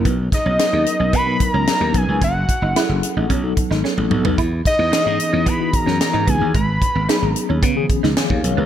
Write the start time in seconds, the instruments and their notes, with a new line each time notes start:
0.05 slap bass B1, clean electric guitar B3, kick, closed hi-hat
0.32 analog synth lead D#5, muted clean electric guitar stroke, kick, snare, closed hi-hat
0.46 slap bass B1, clean electric guitar C#4
0.58 tine electric piano F#3 B3 D#4 A#4, clean electric guitar D#4, snare, closed hi-hat
0.73 slap bass D#2, muted clean electric guitar stroke
0.86 closed hi-hat
1.00 slap bass B1, clean electric guitar C#4
1.13 slap bass B2, clean electric guitar B3, analog synth lead B5, kick, closed hi-hat
1.26 tine electric piano F#3 B3 D#4 A#4
1.40 analog synth lead A#5, muted clean electric guitar stroke, kick, closed hi-hat
1.54 slap bass C#2, clean electric guitar C#4
1.67 muted clean electric guitar stroke, snare, closed hi-hat
1.81 slap bass D#2, clean electric guitar D#4
1.93 slap bass B1, tine electric piano F#3 B3 D#4 B4, clean electric guitar B3, analog synth lead G#5, kick, closed hi-hat
2.08 slap bass C#2
2.22 slap bass F#1, clean electric guitar C#4, analog synth lead F#5, kick, closed hi-hat
2.49 muted clean electric guitar stroke, kick, closed hi-hat
2.62 slap bass F#1, clean electric guitar D#4
2.75 tine electric piano F#3 C#4 E4 G#4, clean electric guitar E4, snare, closed hi-hat
2.83 tine electric piano A4
2.89 slap bass F#1, muted clean electric guitar stroke
3.03 closed hi-hat
3.17 slap bass A1, clean electric guitar D#4
3.30 slap bass B1, clean electric guitar C#4, kick, closed hi-hat
3.43 tine electric piano F#3 B3 D#4 A4
3.57 muted clean electric guitar stroke, kick, closed hi-hat
3.71 slap bass G#1, clean electric guitar D#4, snare
3.84 clean electric guitar C#4, snare
3.98 slap bass A1, muted clean electric guitar stroke, high tom
4.10 slap bass B1, tine electric piano F#3 B3 D#4 A4, mid tom
4.24 slap bass B1, clean electric guitar B3, floor tom
4.38 slap bass E2, clean electric guitar E4, kick, closed hi-hat
4.65 analog synth lead D#5, muted clean electric guitar stroke, kick, snare, closed hi-hat
4.79 slap bass E2, clean electric guitar B3
4.92 tine electric piano E3 B3 D#4 G#4, clean electric guitar D#4, snare, closed hi-hat
5.06 slap bass G#2, muted clean electric guitar stroke
5.20 closed hi-hat
5.33 slap bass E2, clean electric guitar C#4
5.46 slap bass E3, clean electric guitar B3, analog synth lead B5, kick, closed hi-hat
5.60 tine electric piano E3 B3 D#4 F#4
5.73 analog synth lead A#5, muted clean electric guitar stroke, kick, closed hi-hat
5.86 slap bass F#2, clean electric guitar C#4, snare
6.00 muted clean electric guitar stroke, snare, closed hi-hat
6.13 slap bass G#2, clean electric guitar D#4
6.27 slap bass C#2, tine electric piano E3 B3 D#4 G#4, clean electric guitar B3, analog synth lead G#5, kick, closed hi-hat
6.41 slap bass D#2
6.54 slap bass G#1, clean electric guitar G#3, analog synth lead B5, kick, closed hi-hat
6.82 muted clean electric guitar stroke, kick, closed hi-hat
6.95 slap bass G#1, clean electric guitar B3
7.08 tine electric piano F#3 B3 D#4 G#4, clean electric guitar D#4, snare, closed hi-hat
7.22 slap bass G#1, analog synth lead A#5, muted clean electric guitar stroke
7.36 closed hi-hat
7.49 slap bass D#2, clean electric guitar C#4
7.63 slap bass C#3, clean electric guitar B3, kick, closed hi-hat
7.76 tine electric piano D#3 B3 C#4 G#4
7.82 tine electric piano F3
7.89 muted clean electric guitar stroke, kick, closed hi-hat
8.03 slap bass C#2, clean electric guitar D#4, snare
8.17 clean electric guitar C#4, tine electric piano F5 G#5, snare, closed hi-hat
8.30 slap bass D#2, tine electric piano C#5 F5, muted clean electric guitar stroke, kick
8.43 slap bass B1, tine electric piano A#4 C#5, closed hi-hat
8.57 slap bass C#2, clean electric guitar B3, tine electric piano G#4 B4